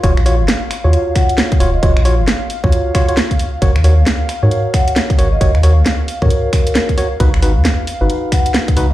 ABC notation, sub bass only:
X:1
M:4/4
L:1/16
Q:"Swing 16ths" 1/4=134
K:Ebm
V:1 name="Sub bass" clef=bass
E,,, B,,,2 G,,, z3 E,, z6 E,,,2 | E,,, B,,,2 G,,, z3 E,, z8 | A,,, E,,2 D,, z3 A,, z6 A,,,2 | A,,, E,,2 D,, z3 A,, z8 |
D,, A,,,2 G,, z3 A,,, z6 D,,2 |]